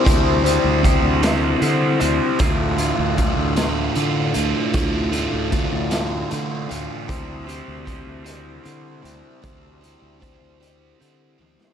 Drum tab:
HH |x-x-x-x-x-x-|x-x-x-x-x-x-|x-x-x-x-x-x-|x-x-x-x-x-x-|
SD |------o-----|------o-----|------o-----|------------|
T1 |------------|------------|------------|------------|
BD |o---o-------|o---o-------|o---o-------|o---o-------|

HH |x-x-x-x-x---|
SD |-----------o|
T1 |----------o-|
BD |o---o-------|